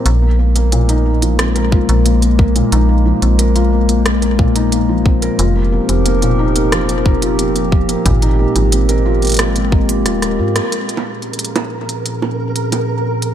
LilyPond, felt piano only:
\new Staff \with { instrumentName = "Felt piano" } { \time 4/4 \key bes \dorian \tempo 4 = 90 bes16 bes16 bes16 bes16 bes,16 ees'16 bes16 f16 c'16 bes'16 f'16 bes16 bes16 bes16 bes16 bes,16 | ees'16 bes16 f16 c'16 bes'16 f'16 bes16 bes16 bes16 bes16 bes,16 ees'16 bes16 f16 c'16 bes'16 | f'16 bes16 bes16 bes16 bes16 bes,16 ees'16 bes16 f16 c'16 bes'16 f'16 bes16 bes16 bes16 bes16 | bes,16 ees'16 bes16 f16 c'16 bes'16 f'16 bes16 bes16 bes16 bes16 bes16 f'16 bes'16 f'16 bes16 |
r1 | }